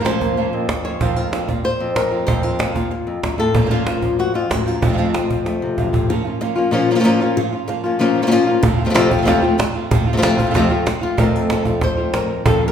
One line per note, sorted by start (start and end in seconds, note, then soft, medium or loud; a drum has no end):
0.00 0.53 A#2 medium
0.00 0.04 F3 soft
0.00 0.04 A#3 soft
0.00 0.05 C#4 soft
0.00 0.05 F4 medium
0.00 0.05 C5 medium
0.05 0.36 A#2 medium
0.05 0.36 F3 medium
0.05 0.37 A#3 medium
0.05 0.37 C#4 medium
0.05 0.37 F4 medium
0.05 0.84 C5 medium
0.05 0.37 C5 medium
0.05 cajon slap medium
0.21 1.04 A#3 soft
0.21 cajon bass medium
0.37 0.67 A#2 medium
0.37 0.68 F3 medium
0.37 0.68 A#3 medium
0.37 0.99 C#4 soft
0.37 0.68 C#4 medium
0.37 0.68 F4 medium
0.37 0.69 C5 medium
0.53 1.00 F2 medium
0.69 muted nylon-string guitar stroke soft
0.69 cajon bass medium
0.69 cajon slap medium
0.85 1.00 A#3 soft
0.85 1.01 C#4 soft
0.85 1.00 F4 soft
0.85 1.00 C5 soft
0.85 1.01 C#5 medium
1.00 1.16 F2 soft
1.00 1.49 F2 medium
1.00 1.16 A#2 soft
1.00 1.16 F3 medium
1.00 1.16 A#3 medium
1.00 1.16 C4 medium
1.00 1.15 F4 medium
1.00 1.16 C5 medium
1.00 cajon bass medium
1.16 1.31 F3 soft
1.16 1.32 A#3 soft
1.16 1.32 C4 soft
1.16 1.32 F4 soft
1.16 1.64 A#4 medium
1.16 cajon slap soft
1.32 1.47 F3 soft
1.32 1.48 A#3 soft
1.32 1.48 C4 soft
1.32 1.47 F4 soft
1.32 cajon slap medium
1.48 1.81 A#2 soft
1.48 1.63 F3 soft
1.48 1.63 A#3 soft
1.48 1.64 C4 soft
1.48 1.64 F4 soft
1.48 cajon bass medium
1.64 1.96 C5 medium
1.64 muted nylon-string guitar stroke soft
1.64 cajon slap soft
1.80 2.27 F2 medium
1.96 2.26 A#4 medium
1.96 cajon slap medium
2.12 2.27 F3 soft
2.12 2.28 A#3 soft
2.12 2.27 C4 soft
2.12 2.27 F4 soft
2.12 cajon slap soft
2.27 2.43 F2 medium
2.27 2.76 F2 medium
2.27 2.43 A#2 soft
2.27 2.44 F3 medium
2.27 2.44 A#3 medium
2.27 2.43 C4 medium
2.27 2.43 F4 medium
2.27 2.43 C5 medium
2.27 cajon bass medium
2.43 2.58 F3 soft
2.43 2.59 A#3 soft
2.43 2.59 C4 soft
2.43 2.59 F4 soft
2.43 2.59 A#4 medium
2.59 2.75 F3 soft
2.59 2.75 A#3 soft
2.59 2.75 C4 soft
2.59 3.39 F4 medium
2.59 2.74 F4 soft
2.59 cajon slap medium
2.75 3.07 A#2 soft
2.75 2.90 F3 soft
2.75 2.90 A#3 soft
2.75 2.91 C4 soft
2.75 2.91 F4 soft
2.75 cajon bass medium
2.91 muted nylon-string guitar stroke soft
3.07 3.23 F2 soft
3.23 3.38 F#2 medium
3.23 cajon bass medium
3.23 cajon slap medium
3.38 3.55 A2 medium
3.38 3.54 F3 soft
3.38 3.54 A#3 soft
3.38 3.55 C4 soft
3.38 3.54 F4 soft
3.38 3.71 A4 medium
3.54 4.34 A#2 medium
3.54 3.69 A#2 medium
3.54 3.60 F3 medium
3.54 3.61 A#3 medium
3.54 3.61 C#4 medium
3.54 3.61 F4 medium
3.54 3.61 C5 medium
3.54 cajon bass medium
3.62 3.64 F3 soft
3.62 3.65 A#3 soft
3.62 3.65 C#4 soft
3.62 3.66 F4 soft
3.62 3.66 C5 soft
3.66 3.69 F3 soft
3.66 3.70 A#3 medium
3.66 3.70 C#4 medium
3.66 3.70 F4 soft
3.66 3.70 C5 soft
3.70 3.86 A#2 medium
3.70 3.86 F3 medium
3.70 3.86 A#3 medium
3.70 3.87 C#4 medium
3.70 4.19 F4 medium
3.70 3.87 F4 medium
3.70 3.85 C5 medium
3.70 cajon slap soft
3.87 4.18 A#3 soft
3.87 4.18 C#4 soft
3.87 4.18 F4 soft
3.87 4.18 C5 soft
3.87 cajon slap medium
4.02 5.30 F3 medium
4.02 cajon bass medium
4.19 4.35 F#4 medium
4.19 muted nylon-string guitar stroke soft
4.19 cajon slap soft
4.34 4.49 F2 medium
4.34 4.51 F4 medium
4.50 4.66 A2 medium
4.50 4.66 A#3 soft
4.50 4.66 C#4 soft
4.50 4.65 F4 soft
4.50 4.67 F#4 medium
4.50 4.65 C5 soft
4.50 cajon bass medium
4.50 cajon slap medium
4.66 4.82 F#2 medium
4.66 4.83 A#3 soft
4.66 4.82 C#4 soft
4.66 4.82 F4 soft
4.66 6.10 F4 medium
4.66 4.82 C5 soft
4.81 4.96 F2 medium
4.81 5.78 F2 medium
4.81 4.84 C3 medium
4.81 4.87 C3 soft
4.81 4.84 F3 soft
4.81 4.88 F3 soft
4.81 4.85 A3 medium
4.81 4.88 A3 soft
4.81 4.98 C4 soft
4.81 4.85 C4 medium
4.81 4.88 C4 soft
4.81 4.89 F4 soft
4.81 cajon bass medium
4.89 4.92 C3 soft
4.89 4.92 F3 soft
4.89 4.93 A3 soft
4.89 4.93 C4 soft
4.89 4.93 F4 medium
4.93 4.97 C3 soft
4.93 4.97 F3 soft
4.93 4.97 A3 soft
4.93 4.97 C4 soft
4.93 4.98 F4 medium
4.98 5.13 F2 medium
4.98 5.13 C3 medium
4.98 5.14 F3 medium
4.98 5.14 A3 medium
4.98 5.13 C4 medium
4.98 5.14 C4 soft
4.98 5.12 F4 medium
5.14 5.45 F3 soft
5.14 5.46 A3 soft
5.14 5.46 C4 soft
5.14 6.10 C4 soft
5.14 5.45 F4 soft
5.14 cajon slap medium
5.31 6.08 F3 medium
5.31 cajon bass medium
5.46 6.08 A3 soft
5.46 muted nylon-string guitar stroke soft
5.46 cajon slap medium
5.62 6.08 C3 medium
5.77 5.93 F#2 medium
5.77 5.93 F3 soft
5.77 5.93 A3 soft
5.77 5.93 C4 soft
5.77 5.92 F4 soft
5.77 cajon bass medium
5.93 6.09 A2 medium
5.93 6.09 F3 soft
5.93 6.09 A3 soft
5.93 6.09 C4 soft
5.93 6.09 F4 soft
5.93 cajon bass medium
6.09 6.25 A#2 medium
6.09 6.25 F3 medium
6.09 6.25 A#3 medium
6.09 6.25 C#4 medium
6.09 6.24 F4 medium
6.09 muted nylon-string guitar stroke medium
6.25 6.40 A#3 soft
6.25 6.41 C#4 soft
6.25 6.41 F4 soft
6.41 6.72 F3 soft
6.41 6.73 A#3 medium
6.41 6.72 C#4 medium
6.41 6.73 F4 medium
6.41 muted nylon-string guitar stroke medium
6.55 6.71 A#3 soft
6.55 6.72 C#4 soft
6.55 6.72 F4 medium
6.71 7.03 A#2 medium
6.71 6.90 F3 medium
6.71 6.90 A#3 medium
6.71 6.90 C#4 loud
6.71 6.90 F4 loud
6.71 muted nylon-string guitar stroke medium
6.88 6.94 F3 medium
6.88 7.21 A#3 soft
6.88 6.94 A#3 medium
6.88 7.20 C#4 soft
6.88 6.95 C#4 medium
6.88 7.19 F4 soft
6.88 6.95 F4 medium
6.95 6.98 F3 medium
6.95 6.99 A#3 medium
6.95 6.99 C#4 medium
6.95 7.00 F4 medium
7.00 7.04 F3 medium
7.00 7.04 A#3 medium
7.00 7.04 C#4 medium
7.00 7.05 F4 medium
7.04 7.20 A#2 medium
7.04 7.20 F3 medium
7.04 7.20 A#3 medium
7.04 7.20 C#4 loud
7.04 7.20 F4 medium
7.20 7.36 A#3 soft
7.20 7.37 A#3 soft
7.20 7.36 C#4 soft
7.20 7.37 C#4 soft
7.20 7.36 F4 soft
7.20 7.36 F4 medium
7.37 7.52 A#2 medium
7.37 7.52 F3 medium
7.37 7.52 A#3 medium
7.37 7.53 C#4 medium
7.37 7.51 F4 medium
7.37 muted nylon-string guitar stroke medium
7.52 7.68 A#3 soft
7.52 7.68 C#4 soft
7.52 7.68 F4 soft
7.68 7.98 F3 soft
7.68 7.99 A#3 soft
7.68 7.99 C#4 soft
7.68 7.99 F4 soft
7.68 muted nylon-string guitar stroke medium
7.84 7.99 A#3 soft
7.84 8.00 C#4 soft
7.84 7.99 F4 soft
7.99 8.30 A#2 medium
7.99 8.21 F3 medium
7.99 8.21 A#3 medium
7.99 8.22 C#4 medium
7.99 8.22 F4 loud
7.99 muted nylon-string guitar stroke medium
8.16 8.47 A#3 soft
8.16 8.47 C#4 soft
8.16 8.46 F4 soft
8.22 8.26 F3 medium
8.22 8.26 A#3 medium
8.22 8.27 C#4 medium
8.22 8.27 F4 medium
8.27 8.30 F3 medium
8.27 8.30 A#3 medium
8.27 8.31 C#4 medium
8.27 8.31 F4 medium
8.31 8.47 A#2 medium
8.31 8.47 F3 medium
8.31 8.47 A#3 medium
8.31 8.46 C#4 medium
8.31 8.45 F4 medium
8.46 8.63 A#3 soft
8.46 8.63 C#4 medium
8.46 8.63 C#4 soft
8.46 8.62 F4 soft
8.46 8.63 F4 soft
8.63 8.78 F2 medium
8.63 8.79 C3 medium
8.63 8.79 F3 medium
8.63 8.79 A3 medium
8.63 8.78 C4 medium
8.63 8.78 F4 medium
8.63 muted nylon-string guitar stroke medium
8.63 cajon bass loud
8.79 8.94 F3 soft
8.79 8.94 A3 soft
8.79 8.94 C4 soft
8.79 8.95 F4 soft
8.85 8.89 C3 medium
8.85 8.89 F3 medium
8.85 8.89 A3 medium
8.85 8.89 C4 medium
8.85 8.90 F4 medium
8.90 8.93 C3 medium
8.90 8.94 F3 medium
8.90 8.94 A3 medium
8.90 8.94 C4 medium
8.90 8.94 F4 medium
8.94 9.10 F2 medium
8.94 9.10 C3 medium
8.94 9.10 F3 medium
8.94 9.10 A3 medium
8.94 9.10 C4 medium
8.94 9.08 F4 medium
8.94 muted nylon-string guitar stroke medium
8.94 cajon slap loud
9.10 9.17 F3 soft
9.10 9.25 F3 soft
9.10 9.17 A3 soft
9.10 9.26 A3 medium
9.10 9.26 C4 medium
9.10 9.17 C4 soft
9.10 9.26 F4 medium
9.10 9.18 F4 soft
9.10 cajon bass medium
9.18 9.21 C3 soft
9.18 9.21 F3 soft
9.18 9.22 A3 soft
9.18 9.22 C4 soft
9.18 9.22 F4 medium
9.22 9.42 F2 medium
9.22 9.26 C3 medium
9.22 9.42 C3 loud
9.22 9.26 F3 medium
9.22 9.26 A3 medium
9.22 9.26 C4 medium
9.22 9.27 F4 medium
9.27 9.42 F2 medium
9.27 9.42 C3 medium
9.27 9.42 F3 medium
9.27 9.43 F3 medium
9.27 9.42 A3 medium
9.27 9.43 A3 medium
9.27 9.41 C4 medium
9.27 9.42 C4 medium
9.27 9.41 F4 medium
9.27 cajon bass loud
9.27 cajon slap soft
9.42 9.58 F3 soft
9.42 9.59 F3 soft
9.42 9.58 A3 soft
9.42 9.59 A3 soft
9.42 9.58 C4 soft
9.42 9.59 C4 soft
9.42 9.58 F4 soft
9.59 muted nylon-string guitar stroke medium
9.59 cajon slap loud
9.75 9.91 F3 soft
9.75 9.91 A3 soft
9.75 9.91 C4 soft
9.75 9.90 F4 soft
9.91 10.06 F2 medium
9.91 10.06 C3 medium
9.91 10.07 F3 medium
9.91 10.07 A3 medium
9.91 10.06 C4 medium
9.91 10.06 F4 medium
9.91 muted nylon-string guitar stroke medium
9.91 cajon bass loud
10.07 10.22 F3 soft
10.07 10.22 A3 soft
10.07 10.22 C4 soft
10.07 10.22 F4 soft
10.13 10.16 C3 medium
10.13 10.16 F3 medium
10.13 10.17 A3 soft
10.13 10.17 C4 medium
10.13 10.18 F4 medium
10.17 10.21 C3 medium
10.17 10.21 F3 medium
10.17 10.22 A3 medium
10.17 10.22 C4 medium
10.17 10.22 F4 medium
10.22 10.38 F2 medium
10.22 10.38 C3 medium
10.22 10.38 F3 medium
10.22 10.38 A3 medium
10.22 10.38 C4 medium
10.22 10.37 F4 medium
10.22 muted nylon-string guitar stroke medium
10.22 cajon slap loud
10.38 10.54 F3 soft
10.38 10.45 F3 soft
10.38 10.54 A3 soft
10.38 10.45 A3 soft
10.38 10.54 C4 soft
10.38 10.45 C4 soft
10.38 10.54 F4 medium
10.38 10.46 F4 soft
10.38 cajon bass medium
10.46 10.49 C3 soft
10.46 10.50 F3 soft
10.46 10.50 A3 soft
10.46 10.50 C4 soft
10.46 10.50 F4 soft
10.51 10.70 F2 medium
10.51 10.54 C3 medium
10.51 10.70 C3 medium
10.51 10.54 F3 medium
10.51 10.55 A3 medium
10.51 10.55 C4 medium
10.51 10.55 F4 medium
10.55 10.70 F2 medium
10.55 10.70 C3 medium
10.55 10.70 F3 medium
10.55 10.70 A3 medium
10.55 10.70 C4 medium
10.55 10.69 F4 medium
10.55 cajon bass loud
10.55 cajon slap soft
10.70 10.86 F3 soft
10.70 10.85 F3 soft
10.70 10.86 A3 soft
10.70 10.86 C4 soft
10.70 10.85 F4 soft
10.70 10.86 F4 soft
10.86 muted nylon-string guitar stroke medium
10.86 cajon slap medium
11.01 11.17 F3 soft
11.01 11.17 A3 soft
11.01 11.18 C4 soft
11.01 11.17 F4 soft
11.01 11.19 F4 medium
11.17 11.49 F2 medium
11.17 12.45 F2 medium
11.17 11.49 C3 medium
11.17 11.48 F3 medium
11.17 12.44 A3 soft
11.17 11.49 A3 medium
11.17 11.50 C4 medium
11.17 12.45 C4 soft
11.17 11.50 F4 medium
11.17 12.72 F4 soft
11.17 11.36 A#4 medium
11.17 cajon bass loud
11.35 11.51 A4 medium
11.35 cajon slap soft
11.50 11.65 F3 soft
11.50 11.65 A3 soft
11.50 11.65 C4 soft
11.50 11.64 F4 soft
11.50 11.83 A4 medium
11.50 cajon slap medium
11.65 11.81 F3 soft
11.65 11.81 A3 soft
11.65 11.81 C4 soft
11.65 11.81 F4 soft
11.65 cajon bass medium
11.81 12.14 C5 medium
11.81 muted nylon-string guitar stroke soft
11.81 cajon bass medium
11.81 cajon slap soft
11.97 12.14 F3 soft
11.97 12.14 A3 soft
11.97 12.13 C4 soft
11.97 12.12 F4 soft
11.97 cajon slap soft
12.13 12.45 F3 soft
12.13 12.45 C4 soft
12.13 12.45 F4 soft
12.13 12.46 A#4 medium
12.13 cajon slap loud
12.45 12.72 F2 medium
12.45 12.72 A#2 medium
12.45 12.72 F3 medium
12.45 12.72 A#3 medium
12.45 12.72 C#4 medium
12.45 12.72 F4 medium
12.45 12.67 A4 medium
12.45 cajon bass loud
12.68 12.72 A#4 medium